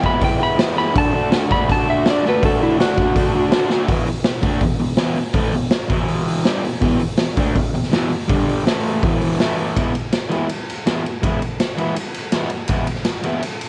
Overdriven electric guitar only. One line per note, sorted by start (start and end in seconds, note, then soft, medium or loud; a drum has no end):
0.03 0.20 E3 medium
0.03 0.21 G#3 medium
0.03 0.22 B3 loud
0.03 0.23 E4 loud
0.21 0.38 E3 loud
0.21 0.39 G#3 loud
0.21 0.39 B3 loud
0.21 0.40 E4 loud
0.39 0.56 E3 medium
0.39 0.57 G#3 medium
0.39 0.59 B3 loud
0.39 0.59 E4 loud
0.57 0.74 E3 medium
0.57 0.75 G#3 medium
0.57 0.76 B3 medium
0.57 0.77 E4 loud
0.75 0.93 E3 loud
0.75 0.94 G#3 medium
0.75 0.94 B3 medium
0.75 0.95 E4 loud
0.94 1.12 D3 loud
0.94 1.14 A3 loud
0.94 1.15 D4 medium
0.94 1.15 F#4 loud
1.13 1.31 D3 medium
1.13 1.32 A3 medium
1.13 1.32 D4 medium
1.13 1.33 F#4 loud
1.31 1.51 D3 medium
1.31 1.52 A3 medium
1.31 1.53 D4 medium
1.31 1.53 F#4 loud
1.51 1.68 D3 medium
1.51 1.69 A3 medium
1.51 1.69 D4 loud
1.51 1.71 F#4 loud
1.69 1.86 D3 loud
1.69 1.87 A3 loud
1.69 1.87 D4 loud
1.69 1.89 F#4 loud
1.87 2.05 D3 loud
1.87 2.06 A3 loud
1.87 2.07 D4 medium
1.87 2.07 F#4 loud
2.06 2.23 D3 medium
2.06 2.24 A3 medium
2.06 2.25 D4 medium
2.06 2.26 F#4 loud
2.25 2.41 D3 medium
2.25 2.42 A3 loud
2.25 2.43 D4 medium
2.25 2.44 F#4 loud
2.42 2.58 D3 loud
2.42 2.59 A3 loud
2.42 2.60 D4 loud
2.42 2.61 F#4 loud
2.59 2.76 D3 medium
2.59 2.77 A3 medium
2.59 2.78 D4 medium
2.59 2.78 F#4 loud
2.77 2.96 D3 medium
2.77 2.96 A3 medium
2.77 2.97 D4 medium
2.77 2.98 F#4 medium
2.97 3.13 D3 medium
2.97 3.15 A3 medium
2.97 3.15 D4 medium
2.97 3.16 F#4 medium
3.14 3.32 D3 loud
3.14 3.33 A3 loud
3.14 3.34 D4 loud
3.14 3.35 F#4 loud
3.33 3.50 D3 loud
3.33 3.52 A3 medium
3.33 3.52 D4 loud
3.33 3.53 F#4 loud
3.51 3.68 D3 medium
3.51 3.69 A3 medium
3.51 3.70 D4 loud
3.51 3.71 F#4 medium
3.69 3.87 D3 loud
3.69 3.88 A3 loud
3.69 3.88 D4 medium
3.69 3.88 F#4 loud
3.89 4.07 E2 loud
3.89 4.07 B2 loud
3.89 4.08 E3 loud
4.08 muted overdriven electric guitar stroke medium
4.25 4.40 E2 medium
4.25 4.40 B2 medium
4.43 4.61 D3 medium
4.43 4.62 A3 loud
4.43 4.62 D4 loud
4.62 4.77 E2 medium
4.62 4.77 B2 medium
4.80 4.95 E2 medium
4.80 4.95 B2 medium
4.97 5.16 E2 medium
4.97 5.17 B2 medium
4.97 5.17 E3 loud
5.17 muted overdriven electric guitar stroke medium
5.33 5.52 A2 loud
5.33 5.53 E3 loud
5.33 5.53 A3 loud
5.53 5.68 E2 medium
5.53 5.68 B2 medium
5.89 6.44 E2 medium
5.89 6.45 B2 loud
5.89 6.45 E3 loud
6.45 6.63 G2 medium
6.45 6.63 D3 loud
6.45 6.64 G3 loud
6.64 6.78 E2 medium
6.64 6.78 B2 medium
6.81 6.99 E2 loud
6.81 7.00 B2 loud
6.81 7.00 E3 loud
7.01 muted overdriven electric guitar stroke medium
7.19 7.34 E2 medium
7.19 7.34 B2 medium
7.37 7.55 D3 medium
7.37 7.55 A3 loud
7.37 7.56 D4 loud
7.56 7.70 E2 medium
7.56 7.70 B2 medium
7.74 7.88 E2 medium
7.74 7.89 B2 medium
7.92 8.09 E2 medium
7.92 8.10 B2 loud
7.92 8.11 E3 loud
8.11 muted overdriven electric guitar stroke medium
8.28 8.64 G2 loud
8.28 8.65 D3 loud
8.28 8.65 G3 loud
8.65 9.01 A2 loud
8.65 9.02 E3 loud
8.65 9.02 A3 loud
9.03 9.38 E2 loud
9.03 9.39 B2 loud
9.03 9.39 E3 loud
9.39 9.75 A2 medium
9.39 9.74 E3 medium
9.39 9.76 A3 loud
9.75 9.90 E3 medium
9.75 9.90 G#3 medium
9.75 9.91 B3 loud
9.75 9.91 E4 medium
10.29 10.44 E3 medium
10.29 10.45 G#3 medium
10.29 10.45 B3 medium
10.29 10.46 E4 loud
10.86 11.00 E3 medium
10.86 11.01 G#3 medium
10.86 11.01 B3 medium
10.86 11.02 E4 medium
11.21 11.37 E3 medium
11.21 11.37 G#3 medium
11.21 11.38 B3 medium
11.21 11.38 E4 loud
11.77 11.92 E3 medium
11.77 11.92 G#3 medium
11.77 11.93 B3 medium
11.77 11.93 E4 medium
12.32 12.47 E3 medium
12.32 12.48 G#3 medium
12.32 12.48 B3 medium
12.32 12.48 E4 medium
12.69 12.84 E3 medium
12.69 12.85 G#3 medium
12.69 12.85 B3 medium
12.69 12.85 E4 medium
13.24 13.40 E3 medium
13.24 13.40 G#3 medium
13.24 13.40 B3 medium
13.24 13.41 E4 loud